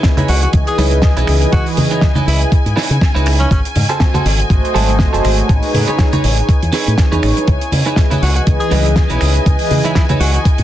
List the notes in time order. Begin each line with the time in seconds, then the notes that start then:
Already playing: G#5
0.03 kick, snare, closed hi-hat
0.17 D#4 E4 B4 C#5, closed hi-hat, low conga
0.28 C#2 F#4, open hi-hat
0.42 E3 F#4 G#4 B4 D#5, muted clean electric guitar stroke, closed hi-hat
0.53 C#2, muted clean electric guitar stroke, kick, closed hi-hat
0.67 G#4, closed hi-hat
0.78 C#2 D#4 E4 B4 C#5, open hi-hat, high conga
0.91 closed hi-hat, muted conga
1.02 kick, snare, closed hi-hat
1.16 B1 D#4 E4 G#4 B4 C#5 D#5, closed hi-hat
1.27 C#2, finger snap, open hi-hat
1.41 E3 G#4 B4 D#5, closed hi-hat
1.52 C#2 F#4, kick, closed hi-hat
1.66 open hi-hat
1.77 C#3, open hi-hat, low conga
1.91 D#4 E4 G#4 B4 C#5 D#5, closed hi-hat, muted conga
2.01 kick, snare, closed hi-hat
2.15 D#4 E4 B4 C#5, closed hi-hat, low conga
2.27 C#2 E4, open hi-hat
2.40 E4 G#4 B4 D#5, muted clean electric guitar stroke, closed hi-hat
2.52 muted clean electric guitar stroke, kick, closed hi-hat
2.66 G#2, closed hi-hat
2.76 D#4 E4 B4 C#5, snare, open hi-hat
2.90 C#3, closed hi-hat
3.01 kick, snare, closed hi-hat
3.14 C#2 D#4 E4 G#4 B4 C#5 F#5, closed hi-hat
3.26 finger snap, open hi-hat
3.40 C#4, closed hi-hat, muted conga
3.51 G#1 C#4, kick, closed hi-hat
3.65 closed hi-hat
3.75 G#2, open hi-hat, low conga
3.89 F#4 G#4 A4 C5 D#5, closed hi-hat
4.00 kick, snare, closed hi-hat
4.14 F#4 G#4 A4 C5, closed hi-hat, low conga
4.25 G#1, open hi-hat
4.38 A3 F#4 C5 D#5, muted clean electric guitar stroke, closed hi-hat
4.50 G#1, muted clean electric guitar stroke, kick, closed hi-hat
4.65 closed hi-hat
4.74 G#1 F#4 G#4 A4 C5, open hi-hat, high conga
4.89 closed hi-hat, muted conga
4.99 kick, snare, closed hi-hat
5.13 F#1 F#4 G#4 A4 C5 D#5, closed hi-hat
5.24 G#1, finger snap, open hi-hat
5.38 D#4 G#4 B4 C#5, closed hi-hat
5.49 A1, kick, closed hi-hat
5.63 open hi-hat
5.74 A2, open hi-hat, low conga
5.87 D#4 G#4 B4 C#5, closed hi-hat, muted conga
5.98 kick, snare, closed hi-hat
6.12 D#4 G#4 B4 C#5, closed hi-hat, low conga
6.24 A1, open hi-hat
6.37 D#4 G#4 B4 C#5, muted clean electric guitar stroke, closed hi-hat
6.48 muted clean electric guitar stroke, kick, closed hi-hat
6.62 E2, closed hi-hat
6.72 D#4 G#4 B4 C#5, snare, open hi-hat
6.86 A2 D#4 G#4 B4 C#5, closed hi-hat
6.98 kick, snare, closed hi-hat
7.11 E2 D#4 G#4 B4 C#5, closed hi-hat
7.23 A1, finger snap, open hi-hat
7.36 E4 G#4 B4 C#5, closed hi-hat, muted conga
7.48 C#2 G#5, kick, closed hi-hat
7.61 closed hi-hat
7.72 C#3, open hi-hat, low conga
7.86 D#4 E4 G#4 B4 C#5 D#5, closed hi-hat
7.96 kick, snare, closed hi-hat
8.10 D#4 E4 B4 C#5, closed hi-hat, low conga
8.22 C#2 F#4, open hi-hat
8.35 E3 F#4 G#4 B4 D#5, muted clean electric guitar stroke, closed hi-hat
8.46 C#2, muted clean electric guitar stroke, kick, closed hi-hat
8.60 G#4, closed hi-hat
8.71 C#2 D#4 E4 B4 C#5, open hi-hat, high conga
8.86 closed hi-hat, muted conga
8.96 kick, snare, closed hi-hat
9.10 B1 D#4 E4 G#4 B4 C#5 D#5, closed hi-hat
9.21 C#2, finger snap, open hi-hat
9.35 E3 G#4 B4 D#5, closed hi-hat
9.46 C#2, kick, closed hi-hat
9.59 open hi-hat
9.71 C#3, open hi-hat, low conga
9.84 D#4 E4 G#4 B4 C#5 D#5, closed hi-hat, muted conga
9.95 E4, kick, snare, closed hi-hat
10.09 D#4 E4 B4 C#5, closed hi-hat, low conga
10.20 C#2 F#4, open hi-hat
10.33 E4 F#4 G#4 B4 D#5, muted clean electric guitar stroke, closed hi-hat
10.45 muted clean electric guitar stroke, kick, closed hi-hat
10.58 G#2, closed hi-hat